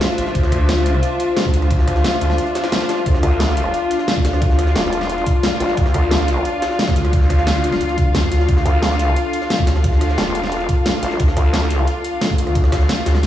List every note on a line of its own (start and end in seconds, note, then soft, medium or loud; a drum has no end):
0.00 13.27 D4 medium
0.00 13.27 F4 medium
0.00 3.04 C5 medium
0.00 3.97 E5 medium
0.00 snare loud
0.00 closed hi-hat medium
0.18 0.34 A1 loud
0.18 snare medium
0.18 closed hi-hat medium
0.18 closed hi-hat loud
0.26 snare soft
0.35 0.51 D2 loud
0.35 kick loud
0.35 closed hi-hat medium
0.43 cross-stick soft
0.43 snare medium
0.52 1.01 D2 loud
0.52 kick medium
0.52 cross-stick medium
0.52 closed hi-hat medium
0.52 closed hi-hat loud
0.69 snare loud
0.69 closed hi-hat medium
0.77 snare medium
0.86 closed hi-hat medium
0.86 closed hi-hat loud
0.94 cross-stick soft
1.03 closed hi-hat medium
1.20 closed hi-hat medium
1.20 closed hi-hat loud
1.37 snare loud
1.37 closed hi-hat medium
1.45 kick loud
1.45 snare soft
1.54 2.03 D2 loud
1.54 closed hi-hat medium
1.54 closed hi-hat loud
1.62 cross-stick soft
1.62 closed hi-hat soft
1.71 kick loud
1.71 closed hi-hat medium
1.79 cross-stick soft
1.79 snare soft
1.87 kick medium
1.87 cross-stick medium
1.87 closed hi-hat medium
1.87 closed hi-hat loud
1.96 snare soft
2.04 snare loud
2.04 closed hi-hat medium
2.21 2.38 D2 loud
2.21 closed hi-hat loud
2.30 cross-stick soft
2.30 snare soft
2.38 closed hi-hat medium
2.38 swell medium
2.47 closed hi-hat soft
2.55 snare loud
2.55 closed hi-hat medium
2.55 closed hi-hat loud
2.64 snare loud
2.64 closed hi-hat medium
2.72 snare loud
2.72 closed hi-hat medium
2.81 snare loud
2.81 closed hi-hat medium
2.89 snare loud
2.89 closed hi-hat medium
2.89 closed hi-hat loud
3.06 3.22 D2 medium
3.06 8.46 D5 medium
3.06 kick loud
3.06 closed hi-hat medium
3.15 cross-stick soft
3.15 snare medium
3.23 3.73 D2 medium
3.23 kick medium
3.23 cross-stick medium
3.23 closed hi-hat loud
3.23 closed hi-hat medium
3.40 snare loud
3.40 closed hi-hat medium
3.48 snare medium
3.57 closed hi-hat medium
3.65 cross-stick soft
3.74 closed hi-hat medium
3.87 13.27 F5 medium
3.87 closed hi-hat medium
3.87 closed hi-hat loud
3.99 snare soft
4.08 snare loud
4.08 closed hi-hat medium
4.16 kick loud
4.25 4.74 D2 loud
4.25 snare loud
4.25 closed hi-hat loud
4.25 closed hi-hat medium
4.33 cross-stick soft
4.33 snare soft
4.42 kick loud
4.42 closed hi-hat medium
4.50 snare soft
4.59 cross-stick medium
4.59 closed hi-hat medium
4.59 closed hi-hat loud
4.67 snare soft
4.76 5.25 E1 medium
4.76 snare loud
4.76 closed hi-hat medium
4.93 closed hi-hat medium
5.01 cross-stick soft
5.01 snare soft
5.01 closed hi-hat soft
5.09 closed hi-hat medium
5.18 closed hi-hat soft
5.26 kick loud
5.26 closed hi-hat medium
5.43 snare loud
5.43 closed hi-hat medium
5.60 5.76 A1 loud
5.60 snare medium
5.60 closed hi-hat medium
5.60 closed hi-hat loud
5.69 snare soft
5.77 5.93 D2 medium
5.77 kick loud
5.77 closed hi-hat medium
5.86 cross-stick soft
5.86 snare medium
5.94 6.44 D2 medium
5.94 kick medium
5.94 cross-stick medium
5.94 closed hi-hat medium
6.11 snare loud
6.11 closed hi-hat medium
6.20 snare medium
6.28 closed hi-hat medium
6.37 cross-stick soft
6.45 closed hi-hat medium
6.45 closed hi-hat loud
6.62 snare loud
6.62 closed hi-hat medium
6.71 snare soft
6.79 snare loud
6.79 closed hi-hat medium
6.88 kick loud
6.88 snare loud
6.88 closed hi-hat medium
6.96 7.46 D2 loud
6.96 snare soft
6.96 closed hi-hat medium
7.05 cross-stick soft
7.05 closed hi-hat medium
7.13 kick loud
7.13 closed hi-hat medium
7.22 snare soft
7.30 kick medium
7.30 cross-stick medium
7.30 closed hi-hat medium
7.38 snare soft
7.47 7.79 D2 loud
7.47 snare loud
7.47 closed hi-hat medium
7.64 closed hi-hat medium
7.72 cross-stick soft
7.72 snare soft
7.72 closed hi-hat soft
7.81 8.13 D2 loud
7.81 closed hi-hat medium
7.89 closed hi-hat soft
7.98 kick loud
7.98 closed hi-hat medium
8.15 8.47 D2 loud
8.15 snare loud
8.15 closed hi-hat medium
8.23 kick medium
8.32 snare medium
8.32 closed hi-hat medium
8.40 snare soft
8.49 8.64 D2 medium
8.49 13.27 A4 medium
8.49 kick loud
8.49 closed hi-hat medium
8.57 cross-stick soft
8.57 snare medium
8.66 9.15 D2 loud
8.66 kick medium
8.66 cross-stick medium
8.66 closed hi-hat medium
8.82 snare loud
8.82 closed hi-hat medium
8.91 snare medium
8.99 closed hi-hat medium
9.08 cross-stick soft
9.16 closed hi-hat medium
9.33 closed hi-hat medium
9.42 snare soft
9.50 snare loud
9.50 closed hi-hat medium
9.59 kick loud
9.67 10.17 D2 loud
9.67 snare loud
9.67 closed hi-hat medium
9.67 closed hi-hat loud
9.76 cross-stick soft
9.76 snare medium
9.84 kick loud
9.84 closed hi-hat medium
9.93 snare soft
10.01 cross-stick medium
10.01 closed hi-hat medium
10.10 snare soft
10.18 10.68 E1 medium
10.18 snare loud
10.18 closed hi-hat medium
10.35 closed hi-hat medium
10.43 cross-stick soft
10.43 snare soft
10.43 closed hi-hat soft
10.52 closed hi-hat medium
10.60 closed hi-hat soft
10.69 kick loud
10.69 closed hi-hat medium
10.86 snare loud
10.86 closed hi-hat medium
11.03 11.18 A1 loud
11.03 snare medium
11.03 closed hi-hat medium
11.03 closed hi-hat loud
11.11 snare soft
11.20 11.35 D2 medium
11.20 kick loud
11.20 closed hi-hat medium
11.28 cross-stick soft
11.28 snare medium
11.37 11.86 D2 medium
11.37 kick medium
11.37 cross-stick medium
11.37 closed hi-hat medium
11.37 closed hi-hat loud
11.53 snare loud
11.53 closed hi-hat medium
11.62 snare medium
11.70 closed hi-hat medium
11.79 cross-stick soft
11.87 closed hi-hat medium
12.04 closed hi-hat medium
12.04 closed hi-hat loud
12.21 snare loud
12.21 closed hi-hat medium
12.30 kick loud
12.30 snare soft
12.38 12.88 D2 loud
12.38 closed hi-hat loud
12.38 closed hi-hat medium
12.47 cross-stick soft
12.47 closed hi-hat soft
12.55 kick loud
12.55 closed hi-hat medium
12.64 cross-stick soft
12.64 snare medium
12.72 kick medium
12.72 cross-stick medium
12.72 snare loud
12.72 closed hi-hat medium
12.81 snare soft
12.89 snare loud
12.89 closed hi-hat medium
13.06 13.27 D2 loud
13.06 snare loud
13.06 closed hi-hat medium
13.06 closed hi-hat loud
13.15 cross-stick soft
13.15 snare soft
13.15 snare medium
13.23 snare medium
13.23 closed hi-hat medium